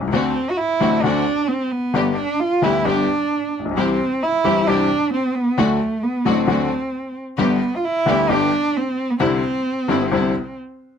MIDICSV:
0, 0, Header, 1, 4, 480
1, 0, Start_track
1, 0, Key_signature, 0, "major"
1, 0, Tempo, 453858
1, 140, Time_signature, 4, 2, 24, 8
1, 11617, End_track
2, 0, Start_track
2, 0, Title_t, "String section"
2, 0, Program_c, 0, 48
2, 134, Note_on_c, 0, 60, 66
2, 134, Note_on_c, 0, 62, 60
2, 135, Note_on_c, 0, 66, 69
2, 338, Note_off_c, 0, 60, 0
2, 338, Note_off_c, 0, 62, 0
2, 338, Note_off_c, 0, 66, 0
2, 853, Note_on_c, 0, 60, 66
2, 857, Note_on_c, 0, 62, 57
2, 858, Note_on_c, 0, 66, 70
2, 1057, Note_off_c, 0, 60, 0
2, 1059, Note_off_c, 0, 62, 0
2, 1059, Note_off_c, 0, 66, 0
2, 1092, Note_on_c, 0, 60, 62
2, 1093, Note_on_c, 0, 62, 60
2, 1096, Note_on_c, 0, 66, 74
2, 1296, Note_off_c, 0, 60, 0
2, 1296, Note_off_c, 0, 62, 0
2, 1298, Note_off_c, 0, 66, 0
2, 2053, Note_on_c, 0, 59, 65
2, 2058, Note_on_c, 0, 62, 56
2, 2059, Note_on_c, 0, 67, 75
2, 2256, Note_off_c, 0, 59, 0
2, 2258, Note_off_c, 0, 62, 0
2, 2259, Note_off_c, 0, 67, 0
2, 2780, Note_on_c, 0, 62, 57
2, 2781, Note_on_c, 0, 59, 63
2, 2786, Note_on_c, 0, 67, 67
2, 2981, Note_off_c, 0, 59, 0
2, 2981, Note_off_c, 0, 62, 0
2, 2984, Note_off_c, 0, 67, 0
2, 3014, Note_on_c, 0, 59, 64
2, 3019, Note_on_c, 0, 62, 58
2, 3019, Note_on_c, 0, 67, 68
2, 3219, Note_off_c, 0, 59, 0
2, 3221, Note_off_c, 0, 62, 0
2, 3221, Note_off_c, 0, 67, 0
2, 3982, Note_on_c, 0, 64, 57
2, 3983, Note_on_c, 0, 60, 68
2, 3987, Note_on_c, 0, 67, 73
2, 4185, Note_off_c, 0, 64, 0
2, 4186, Note_off_c, 0, 60, 0
2, 4188, Note_off_c, 0, 67, 0
2, 4699, Note_on_c, 0, 64, 57
2, 4701, Note_on_c, 0, 60, 64
2, 4704, Note_on_c, 0, 67, 70
2, 4904, Note_off_c, 0, 64, 0
2, 4905, Note_off_c, 0, 60, 0
2, 4906, Note_off_c, 0, 67, 0
2, 4936, Note_on_c, 0, 60, 64
2, 4938, Note_on_c, 0, 64, 57
2, 4941, Note_on_c, 0, 67, 69
2, 5142, Note_off_c, 0, 60, 0
2, 5143, Note_off_c, 0, 64, 0
2, 5145, Note_off_c, 0, 67, 0
2, 5896, Note_on_c, 0, 57, 69
2, 5897, Note_on_c, 0, 62, 58
2, 5898, Note_on_c, 0, 66, 76
2, 6100, Note_off_c, 0, 57, 0
2, 6100, Note_off_c, 0, 62, 0
2, 6101, Note_off_c, 0, 66, 0
2, 6611, Note_on_c, 0, 57, 61
2, 6614, Note_on_c, 0, 62, 60
2, 6618, Note_on_c, 0, 66, 76
2, 6815, Note_off_c, 0, 57, 0
2, 6817, Note_off_c, 0, 62, 0
2, 6819, Note_off_c, 0, 66, 0
2, 6851, Note_on_c, 0, 57, 65
2, 6854, Note_on_c, 0, 62, 59
2, 6854, Note_on_c, 0, 66, 68
2, 7055, Note_off_c, 0, 57, 0
2, 7056, Note_off_c, 0, 62, 0
2, 7056, Note_off_c, 0, 66, 0
2, 7801, Note_on_c, 0, 59, 70
2, 7802, Note_on_c, 0, 62, 66
2, 7806, Note_on_c, 0, 67, 78
2, 8008, Note_off_c, 0, 59, 0
2, 8008, Note_off_c, 0, 62, 0
2, 8010, Note_off_c, 0, 67, 0
2, 8532, Note_on_c, 0, 59, 71
2, 8535, Note_on_c, 0, 62, 64
2, 8536, Note_on_c, 0, 67, 70
2, 8733, Note_off_c, 0, 59, 0
2, 8734, Note_off_c, 0, 62, 0
2, 8735, Note_off_c, 0, 67, 0
2, 8765, Note_on_c, 0, 59, 64
2, 8769, Note_on_c, 0, 62, 59
2, 8770, Note_on_c, 0, 67, 73
2, 8969, Note_off_c, 0, 59, 0
2, 8971, Note_off_c, 0, 62, 0
2, 8971, Note_off_c, 0, 67, 0
2, 9728, Note_on_c, 0, 60, 72
2, 9729, Note_on_c, 0, 62, 62
2, 9731, Note_on_c, 0, 64, 79
2, 9931, Note_off_c, 0, 60, 0
2, 9931, Note_off_c, 0, 62, 0
2, 9932, Note_off_c, 0, 64, 0
2, 10456, Note_on_c, 0, 60, 65
2, 10457, Note_on_c, 0, 62, 57
2, 10460, Note_on_c, 0, 64, 72
2, 10656, Note_off_c, 0, 60, 0
2, 10656, Note_off_c, 0, 62, 0
2, 10658, Note_off_c, 0, 64, 0
2, 10698, Note_on_c, 0, 60, 62
2, 10700, Note_on_c, 0, 62, 56
2, 10701, Note_on_c, 0, 64, 67
2, 10898, Note_off_c, 0, 60, 0
2, 10898, Note_off_c, 0, 62, 0
2, 10899, Note_off_c, 0, 64, 0
2, 11617, End_track
3, 0, Start_track
3, 0, Title_t, "Cello"
3, 0, Program_c, 1, 42
3, 128, Note_on_c, 1, 60, 73
3, 533, Note_on_c, 1, 66, 57
3, 549, Note_off_c, 1, 60, 0
3, 602, Note_on_c, 1, 64, 71
3, 618, Note_off_c, 1, 66, 0
3, 1073, Note_on_c, 1, 62, 79
3, 1089, Note_off_c, 1, 64, 0
3, 1562, Note_on_c, 1, 60, 73
3, 1578, Note_off_c, 1, 62, 0
3, 1807, Note_on_c, 1, 59, 75
3, 1822, Note_off_c, 1, 60, 0
3, 2281, Note_off_c, 1, 59, 0
3, 2287, Note_on_c, 1, 62, 78
3, 2532, Note_on_c, 1, 65, 83
3, 2548, Note_off_c, 1, 62, 0
3, 2779, Note_on_c, 1, 64, 75
3, 2795, Note_off_c, 1, 65, 0
3, 3019, Note_on_c, 1, 62, 73
3, 3035, Note_off_c, 1, 64, 0
3, 3744, Note_off_c, 1, 62, 0
3, 3997, Note_on_c, 1, 60, 81
3, 4468, Note_on_c, 1, 64, 82
3, 4484, Note_off_c, 1, 60, 0
3, 4942, Note_on_c, 1, 62, 86
3, 4958, Note_off_c, 1, 64, 0
3, 5422, Note_off_c, 1, 62, 0
3, 5430, Note_on_c, 1, 60, 73
3, 5655, Note_on_c, 1, 59, 68
3, 5670, Note_off_c, 1, 60, 0
3, 5905, Note_on_c, 1, 57, 73
3, 5921, Note_off_c, 1, 59, 0
3, 6379, Note_on_c, 1, 59, 68
3, 6395, Note_off_c, 1, 57, 0
3, 6622, Note_on_c, 1, 60, 73
3, 6637, Note_off_c, 1, 59, 0
3, 7576, Note_off_c, 1, 60, 0
3, 7812, Note_on_c, 1, 59, 79
3, 8208, Note_on_c, 1, 65, 62
3, 8224, Note_off_c, 1, 59, 0
3, 8297, Note_on_c, 1, 64, 82
3, 8313, Note_off_c, 1, 65, 0
3, 8775, Note_on_c, 1, 62, 85
3, 8791, Note_off_c, 1, 64, 0
3, 9269, Note_on_c, 1, 60, 74
3, 9285, Note_off_c, 1, 62, 0
3, 9625, Note_on_c, 1, 59, 58
3, 9641, Note_off_c, 1, 60, 0
3, 9732, Note_off_c, 1, 59, 0
3, 9739, Note_on_c, 1, 60, 75
3, 11137, Note_off_c, 1, 60, 0
3, 11617, End_track
4, 0, Start_track
4, 0, Title_t, "Upright piano"
4, 0, Program_c, 2, 0
4, 13, Note_on_c, 2, 36, 53
4, 76, Note_off_c, 2, 36, 0
4, 79, Note_on_c, 2, 37, 64
4, 134, Note_on_c, 2, 50, 68
4, 139, Note_off_c, 2, 37, 0
4, 139, Note_on_c, 2, 57, 56
4, 140, Note_on_c, 2, 38, 70
4, 141, Note_on_c, 2, 60, 58
4, 143, Note_on_c, 2, 66, 62
4, 340, Note_off_c, 2, 57, 0
4, 341, Note_off_c, 2, 38, 0
4, 341, Note_off_c, 2, 50, 0
4, 341, Note_off_c, 2, 60, 0
4, 342, Note_off_c, 2, 66, 0
4, 848, Note_on_c, 2, 57, 53
4, 850, Note_on_c, 2, 45, 74
4, 850, Note_on_c, 2, 50, 58
4, 851, Note_on_c, 2, 33, 69
4, 852, Note_on_c, 2, 60, 58
4, 856, Note_on_c, 2, 66, 66
4, 1054, Note_off_c, 2, 57, 0
4, 1055, Note_off_c, 2, 45, 0
4, 1055, Note_off_c, 2, 50, 0
4, 1056, Note_off_c, 2, 33, 0
4, 1056, Note_off_c, 2, 60, 0
4, 1058, Note_off_c, 2, 66, 0
4, 1094, Note_on_c, 2, 50, 71
4, 1098, Note_on_c, 2, 57, 54
4, 1099, Note_on_c, 2, 38, 72
4, 1101, Note_on_c, 2, 60, 55
4, 1102, Note_on_c, 2, 66, 69
4, 1299, Note_off_c, 2, 57, 0
4, 1300, Note_off_c, 2, 38, 0
4, 1300, Note_off_c, 2, 50, 0
4, 1300, Note_off_c, 2, 60, 0
4, 1301, Note_off_c, 2, 66, 0
4, 2047, Note_on_c, 2, 50, 64
4, 2051, Note_on_c, 2, 43, 69
4, 2051, Note_on_c, 2, 55, 53
4, 2053, Note_on_c, 2, 31, 69
4, 2055, Note_on_c, 2, 59, 53
4, 2056, Note_on_c, 2, 67, 68
4, 2253, Note_off_c, 2, 50, 0
4, 2255, Note_off_c, 2, 43, 0
4, 2255, Note_off_c, 2, 55, 0
4, 2256, Note_off_c, 2, 31, 0
4, 2257, Note_off_c, 2, 59, 0
4, 2258, Note_off_c, 2, 67, 0
4, 2769, Note_on_c, 2, 50, 62
4, 2772, Note_on_c, 2, 55, 55
4, 2773, Note_on_c, 2, 38, 65
4, 2776, Note_on_c, 2, 59, 52
4, 2777, Note_on_c, 2, 67, 61
4, 2977, Note_off_c, 2, 38, 0
4, 2977, Note_off_c, 2, 55, 0
4, 2978, Note_off_c, 2, 50, 0
4, 2979, Note_off_c, 2, 59, 0
4, 2979, Note_off_c, 2, 67, 0
4, 3009, Note_on_c, 2, 50, 57
4, 3010, Note_on_c, 2, 55, 54
4, 3012, Note_on_c, 2, 31, 70
4, 3013, Note_on_c, 2, 43, 69
4, 3015, Note_on_c, 2, 59, 55
4, 3017, Note_on_c, 2, 67, 63
4, 3216, Note_off_c, 2, 50, 0
4, 3217, Note_off_c, 2, 55, 0
4, 3218, Note_off_c, 2, 31, 0
4, 3218, Note_off_c, 2, 43, 0
4, 3219, Note_off_c, 2, 59, 0
4, 3220, Note_off_c, 2, 67, 0
4, 3800, Note_on_c, 2, 33, 38
4, 3862, Note_off_c, 2, 33, 0
4, 3864, Note_on_c, 2, 34, 50
4, 3924, Note_off_c, 2, 34, 0
4, 3924, Note_on_c, 2, 35, 60
4, 3983, Note_on_c, 2, 52, 55
4, 3984, Note_off_c, 2, 35, 0
4, 3987, Note_on_c, 2, 55, 56
4, 3988, Note_on_c, 2, 36, 69
4, 3988, Note_on_c, 2, 48, 66
4, 3989, Note_on_c, 2, 60, 53
4, 3989, Note_on_c, 2, 67, 65
4, 4186, Note_off_c, 2, 52, 0
4, 4187, Note_off_c, 2, 55, 0
4, 4188, Note_off_c, 2, 36, 0
4, 4188, Note_off_c, 2, 48, 0
4, 4189, Note_off_c, 2, 60, 0
4, 4189, Note_off_c, 2, 67, 0
4, 4700, Note_on_c, 2, 52, 58
4, 4701, Note_on_c, 2, 31, 67
4, 4702, Note_on_c, 2, 55, 54
4, 4703, Note_on_c, 2, 43, 65
4, 4704, Note_on_c, 2, 67, 67
4, 4706, Note_on_c, 2, 60, 50
4, 4905, Note_off_c, 2, 31, 0
4, 4905, Note_off_c, 2, 52, 0
4, 4906, Note_off_c, 2, 43, 0
4, 4906, Note_off_c, 2, 55, 0
4, 4907, Note_off_c, 2, 60, 0
4, 4907, Note_off_c, 2, 67, 0
4, 4945, Note_on_c, 2, 52, 57
4, 4947, Note_on_c, 2, 55, 57
4, 4948, Note_on_c, 2, 48, 75
4, 4948, Note_on_c, 2, 60, 54
4, 4949, Note_on_c, 2, 36, 70
4, 4951, Note_on_c, 2, 67, 66
4, 5147, Note_off_c, 2, 52, 0
4, 5148, Note_off_c, 2, 48, 0
4, 5148, Note_off_c, 2, 55, 0
4, 5148, Note_off_c, 2, 60, 0
4, 5149, Note_off_c, 2, 36, 0
4, 5150, Note_off_c, 2, 67, 0
4, 5898, Note_on_c, 2, 50, 70
4, 5902, Note_on_c, 2, 38, 70
4, 5904, Note_on_c, 2, 54, 54
4, 5904, Note_on_c, 2, 57, 56
4, 5906, Note_on_c, 2, 66, 66
4, 6103, Note_off_c, 2, 38, 0
4, 6103, Note_off_c, 2, 50, 0
4, 6104, Note_off_c, 2, 54, 0
4, 6104, Note_off_c, 2, 57, 0
4, 6105, Note_off_c, 2, 66, 0
4, 6613, Note_on_c, 2, 45, 71
4, 6613, Note_on_c, 2, 50, 61
4, 6614, Note_on_c, 2, 33, 72
4, 6614, Note_on_c, 2, 54, 58
4, 6615, Note_on_c, 2, 57, 51
4, 6620, Note_on_c, 2, 66, 68
4, 6816, Note_off_c, 2, 45, 0
4, 6817, Note_off_c, 2, 33, 0
4, 6817, Note_off_c, 2, 50, 0
4, 6817, Note_off_c, 2, 54, 0
4, 6818, Note_off_c, 2, 57, 0
4, 6820, Note_off_c, 2, 66, 0
4, 6847, Note_on_c, 2, 50, 75
4, 6848, Note_on_c, 2, 54, 55
4, 6850, Note_on_c, 2, 38, 78
4, 6850, Note_on_c, 2, 57, 56
4, 6853, Note_on_c, 2, 66, 67
4, 7053, Note_off_c, 2, 54, 0
4, 7055, Note_off_c, 2, 38, 0
4, 7055, Note_off_c, 2, 50, 0
4, 7055, Note_off_c, 2, 57, 0
4, 7056, Note_off_c, 2, 66, 0
4, 7805, Note_on_c, 2, 50, 61
4, 7806, Note_on_c, 2, 31, 70
4, 7807, Note_on_c, 2, 43, 78
4, 7808, Note_on_c, 2, 55, 56
4, 7809, Note_on_c, 2, 59, 59
4, 7813, Note_on_c, 2, 67, 69
4, 8009, Note_off_c, 2, 50, 0
4, 8010, Note_off_c, 2, 31, 0
4, 8011, Note_off_c, 2, 43, 0
4, 8011, Note_off_c, 2, 55, 0
4, 8012, Note_off_c, 2, 59, 0
4, 8014, Note_off_c, 2, 67, 0
4, 8523, Note_on_c, 2, 50, 70
4, 8524, Note_on_c, 2, 55, 55
4, 8526, Note_on_c, 2, 38, 75
4, 8528, Note_on_c, 2, 59, 56
4, 8528, Note_on_c, 2, 67, 67
4, 8729, Note_off_c, 2, 55, 0
4, 8730, Note_off_c, 2, 38, 0
4, 8731, Note_off_c, 2, 50, 0
4, 8731, Note_off_c, 2, 59, 0
4, 8731, Note_off_c, 2, 67, 0
4, 8768, Note_on_c, 2, 50, 67
4, 8772, Note_on_c, 2, 31, 72
4, 8773, Note_on_c, 2, 55, 59
4, 8774, Note_on_c, 2, 43, 74
4, 8776, Note_on_c, 2, 59, 55
4, 8779, Note_on_c, 2, 67, 71
4, 8971, Note_off_c, 2, 50, 0
4, 8972, Note_off_c, 2, 31, 0
4, 8973, Note_off_c, 2, 43, 0
4, 8973, Note_off_c, 2, 55, 0
4, 8974, Note_off_c, 2, 59, 0
4, 8976, Note_off_c, 2, 67, 0
4, 9729, Note_on_c, 2, 50, 63
4, 9730, Note_on_c, 2, 36, 76
4, 9730, Note_on_c, 2, 55, 57
4, 9734, Note_on_c, 2, 48, 71
4, 9734, Note_on_c, 2, 60, 54
4, 9734, Note_on_c, 2, 64, 71
4, 9931, Note_off_c, 2, 50, 0
4, 9932, Note_off_c, 2, 36, 0
4, 9932, Note_off_c, 2, 55, 0
4, 9934, Note_off_c, 2, 48, 0
4, 9934, Note_off_c, 2, 60, 0
4, 9934, Note_off_c, 2, 64, 0
4, 10451, Note_on_c, 2, 50, 59
4, 10452, Note_on_c, 2, 43, 74
4, 10455, Note_on_c, 2, 31, 69
4, 10455, Note_on_c, 2, 55, 52
4, 10457, Note_on_c, 2, 60, 55
4, 10459, Note_on_c, 2, 64, 65
4, 10653, Note_off_c, 2, 50, 0
4, 10654, Note_off_c, 2, 43, 0
4, 10655, Note_off_c, 2, 55, 0
4, 10656, Note_off_c, 2, 31, 0
4, 10656, Note_off_c, 2, 60, 0
4, 10657, Note_off_c, 2, 64, 0
4, 10697, Note_on_c, 2, 50, 64
4, 10697, Note_on_c, 2, 55, 58
4, 10698, Note_on_c, 2, 36, 72
4, 10698, Note_on_c, 2, 48, 72
4, 10700, Note_on_c, 2, 60, 55
4, 10700, Note_on_c, 2, 64, 67
4, 10897, Note_off_c, 2, 50, 0
4, 10897, Note_off_c, 2, 55, 0
4, 10898, Note_off_c, 2, 36, 0
4, 10898, Note_off_c, 2, 48, 0
4, 10898, Note_off_c, 2, 60, 0
4, 10899, Note_off_c, 2, 64, 0
4, 11617, End_track
0, 0, End_of_file